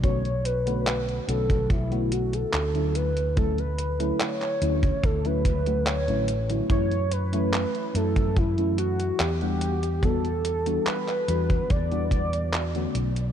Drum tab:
HH |xxxxxxxxxxxxxxxx|xxxxxxxxxxxxxxxx|xxxxxxxxxxxxxxxx|xxxxxxxxxxxxxxxx|
CP |----x-------x---|----xx------x---|----x-------x---|----xx------x---|
BD |o------oo-------|o------oo-o-----|o------oo-------|o------oo-o-----|